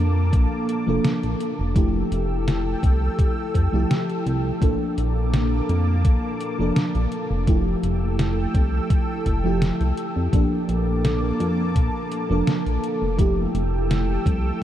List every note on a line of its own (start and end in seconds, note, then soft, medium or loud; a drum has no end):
0.00 0.34 F2 loud
0.00 0.83 F3 medium
0.00 0.83 A#3 medium
0.00 1.73 A#3 medium
0.00 0.84 D4 medium
0.00 0.84 A4 loud
0.00 1.73 A5 medium
0.00 1.73 D6 medium
0.33 0.46 A#1 loud
0.33 kick loud
0.33 closed hi-hat medium
0.69 closed hi-hat medium
0.86 1.00 F1 medium
0.86 1.71 F3 medium
0.86 1.72 A#3 medium
0.86 1.72 D4 medium
0.86 1.73 A4 medium
1.05 snare loud
1.05 closed hi-hat medium
1.23 1.35 A#1 medium
1.23 closed hi-hat soft
1.40 closed hi-hat medium
1.59 2.04 F1 medium
1.75 3.68 F3 medium
1.75 3.69 A3 medium
1.75 3.69 E4 medium
1.75 3.70 G4 loud
1.75 4.59 A4 medium
1.75 4.59 G5 medium
1.75 4.59 E6 medium
1.75 kick loud
1.75 closed hi-hat medium
2.12 2.75 F1 medium
2.12 closed hi-hat medium
2.48 snare loud
2.48 closed hi-hat medium
2.83 3.09 C2 loud
2.83 kick loud
2.83 closed hi-hat medium
3.19 kick loud
3.19 closed hi-hat medium
3.54 3.68 F2 medium
3.54 kick medium
3.54 closed hi-hat medium
3.72 3.85 C2 medium
3.72 4.57 F3 medium
3.72 4.58 A3 medium
3.72 4.58 E4 medium
3.72 4.59 G4 loud
3.91 snare loud
3.91 closed hi-hat medium
4.09 closed hi-hat soft
4.26 4.52 C2 loud
4.26 closed hi-hat medium
4.61 4.75 A#1 loud
4.61 6.54 F3 medium
4.61 6.55 A#3 medium
4.61 7.45 A#3 medium
4.61 6.55 D4 medium
4.61 6.55 A4 loud
4.61 7.45 A5 medium
4.61 7.45 D6 medium
4.61 kick loud
4.61 closed hi-hat medium
4.98 5.61 A#1 medium
4.98 closed hi-hat medium
5.33 snare loud
5.33 closed hi-hat medium
5.69 6.06 F2 loud
5.69 closed hi-hat medium
6.05 6.18 A#1 loud
6.05 kick loud
6.05 closed hi-hat medium
6.41 closed hi-hat medium
6.58 6.71 F1 medium
6.58 7.43 F3 medium
6.58 7.44 A#3 medium
6.58 7.44 D4 medium
6.58 7.45 A4 medium
6.76 snare loud
6.76 closed hi-hat medium
6.95 7.07 A#1 medium
6.95 closed hi-hat soft
7.12 closed hi-hat medium
7.30 7.75 F1 medium
7.46 9.40 F3 medium
7.46 9.40 A3 medium
7.46 9.41 E4 medium
7.46 9.41 G4 loud
7.46 10.30 A4 medium
7.46 10.30 G5 medium
7.46 10.30 E6 medium
7.46 kick loud
7.46 closed hi-hat medium
7.83 8.47 F1 medium
7.83 closed hi-hat medium
8.19 snare loud
8.19 closed hi-hat medium
8.54 8.80 C2 loud
8.54 kick loud
8.54 closed hi-hat medium
8.90 kick loud
8.90 closed hi-hat medium
9.26 9.72 F1 medium
9.26 kick medium
9.26 closed hi-hat medium
9.44 10.29 F3 medium
9.44 10.29 A3 medium
9.44 10.29 E4 medium
9.44 10.30 G4 loud
9.62 snare loud
9.62 closed hi-hat medium
9.81 9.93 C2 medium
9.81 closed hi-hat soft
9.97 closed hi-hat medium
10.16 10.28 F2 medium
10.32 10.46 A#1 loud
10.32 12.26 F3 medium
10.32 12.26 A#3 medium
10.32 13.16 A#3 medium
10.32 12.27 D4 medium
10.32 12.27 A4 loud
10.32 13.16 A5 medium
10.32 13.16 D6 medium
10.32 kick loud
10.32 closed hi-hat medium
10.68 11.32 A#1 medium
10.68 closed hi-hat medium
11.05 snare loud
11.05 closed hi-hat medium
11.40 11.77 F2 loud
11.40 closed hi-hat medium
11.76 11.89 A#1 loud
11.76 kick loud
11.76 closed hi-hat medium
12.12 closed hi-hat medium
12.29 12.42 F1 medium
12.29 13.14 F3 medium
12.29 13.14 A#3 medium
12.29 13.15 D4 medium
12.29 13.16 A4 loud
12.47 snare loud
12.47 closed hi-hat medium
12.66 12.78 A#1 medium
12.66 closed hi-hat soft
12.84 closed hi-hat medium
13.02 13.47 F1 medium
13.17 14.63 F3 medium
13.17 14.63 A3 medium
13.17 14.63 E4 medium
13.17 14.63 G4 loud
13.17 14.63 A4 medium
13.17 14.63 G5 medium
13.17 14.63 E6 medium
13.17 kick loud
13.17 closed hi-hat medium
13.54 14.18 F1 medium
13.54 closed hi-hat medium
13.91 snare loud
13.91 closed hi-hat medium
14.26 14.52 C2 loud
14.26 kick loud
14.26 closed hi-hat medium